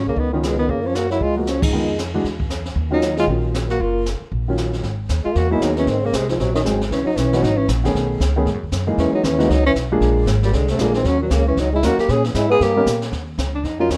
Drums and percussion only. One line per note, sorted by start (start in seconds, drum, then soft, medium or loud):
0.17 brush sweep soft
0.17 kick soft
0.43 snare medium
0.43 hi-hat pedal medium
0.69 brush sweep soft
0.69 kick soft
0.95 snare medium
0.95 hi-hat pedal soft
1.11 snare soft
1.21 brush sweep soft
1.21 kick soft
1.47 snare medium
1.47 hi-hat pedal soft
1.62 kick medium
1.62 ride medium
1.73 brush sweep soft
1.99 snare medium
1.99 hi-hat pedal soft
2.24 brush sweep soft
2.24 kick soft
2.24 snare soft
2.40 kick medium
2.50 snare medium
2.50 hi-hat pedal medium
2.65 snare soft
2.76 brush sweep soft
2.76 kick soft
3.02 snare medium
3.02 hi-hat pedal medium
3.17 snare soft
3.28 brush sweep soft
3.28 kick soft
3.54 snare medium
3.54 hi-hat pedal medium
3.70 snare soft
3.80 brush sweep soft
3.80 kick soft
4.06 snare medium
4.06 hi-hat pedal medium
4.32 brush sweep soft
4.32 kick soft
4.58 snare medium
4.58 hi-hat pedal medium
4.73 snare soft
4.83 brush sweep soft
4.83 kick soft
4.83 snare soft
5.09 kick soft
5.09 snare medium
5.09 hi-hat pedal medium
5.35 brush sweep soft
5.35 kick soft
5.35 snare soft
5.61 kick soft
5.61 snare medium
5.61 hi-hat pedal medium
5.77 snare soft
5.87 brush sweep medium
5.87 kick soft
5.87 snare soft
6.13 kick soft
6.13 snare medium
6.13 hi-hat pedal medium
6.29 snare soft
6.39 brush sweep soft
6.39 kick soft
6.39 snare soft
6.55 snare soft
6.65 kick soft
6.65 snare medium
6.65 hi-hat pedal medium
6.81 snare soft
6.91 brush sweep soft
6.91 kick soft
6.91 snare soft
7.17 kick soft
7.17 snare medium
7.17 hi-hat pedal medium
7.33 snare soft
7.43 brush sweep soft
7.43 kick soft
7.43 snare soft
7.68 kick soft
7.68 snare medium
7.68 hi-hat pedal medium
7.85 snare soft
7.95 brush sweep soft
7.95 kick soft
7.95 snare soft
8.20 kick soft
8.20 snare medium
8.20 hi-hat pedal medium
8.46 brush sweep soft
8.46 kick soft
8.46 snare soft
8.72 kick soft
8.72 snare medium
8.72 hi-hat pedal medium
8.98 brush sweep soft
8.98 kick soft
8.98 snare soft
9.24 kick soft
9.24 snare medium
9.24 hi-hat pedal medium
9.39 snare soft
9.50 brush sweep soft
9.50 kick soft
9.50 snare soft
9.75 kick soft
9.75 snare medium
9.75 hi-hat pedal medium
10.01 brush sweep soft
10.01 kick soft
10.01 snare soft
10.27 kick soft
10.27 snare medium
10.27 hi-hat pedal medium
10.42 snare soft
10.53 brush sweep soft
10.53 kick soft
10.53 snare soft
10.68 snare medium
10.79 kick soft
10.79 snare medium
10.79 hi-hat pedal medium
10.94 snare soft
11.05 brush sweep soft
11.05 kick soft
11.05 snare soft
11.31 kick soft
11.31 snare medium
11.31 hi-hat pedal medium
11.57 brush sweep soft
11.57 kick soft
11.57 snare soft
11.83 kick soft
11.83 snare medium
11.83 hi-hat pedal medium
11.99 snare soft
12.09 brush sweep soft
12.09 kick soft
12.09 snare soft
12.24 snare soft
12.35 kick soft
12.35 snare medium
12.35 hi-hat pedal medium
12.61 brush sweep soft
12.61 kick soft
12.61 snare soft
12.86 kick soft
12.86 snare medium
12.86 hi-hat pedal medium
13.02 snare soft
13.12 brush sweep soft
13.12 kick soft
13.12 snare soft
13.38 kick soft
13.38 snare medium
13.38 hi-hat pedal medium
13.64 brush sweep soft
13.64 kick soft
13.64 snare soft
13.90 kick soft
13.90 snare medium
13.90 hi-hat pedal soft